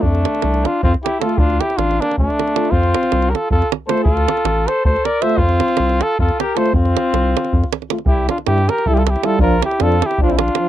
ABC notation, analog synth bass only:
X:1
M:7/8
L:1/8
Q:1/4=157
K:F
V:1 name="Analog synth bass" clef=bass
F,,2 C,,2 F,, z2 | D,,2 A,,,2 D,, z2 | F,,2 C,,2 F,, z2 | D,,2 A,,,2 D,, z2 |
F,,2 C,,2 F,, z2 | F,,2 C,,2 F,, z2 | C,,2 G,,2 C,,3 | B,,,2 F,,2 B,,,3 |]